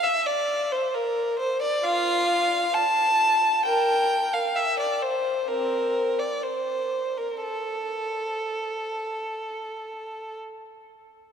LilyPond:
\new Staff \with { instrumentName = "Violin" } { \time 4/4 \key f \major \tempo 4 = 65 e''16 d''8 c''16 bes'8 c''16 d''16 <f' f''>4 a''4 | <bes' g''>8. f''16 e''16 d''16 c''8 <c' bes'>8. d''16 c''8. bes'16 | a'2. r4 | }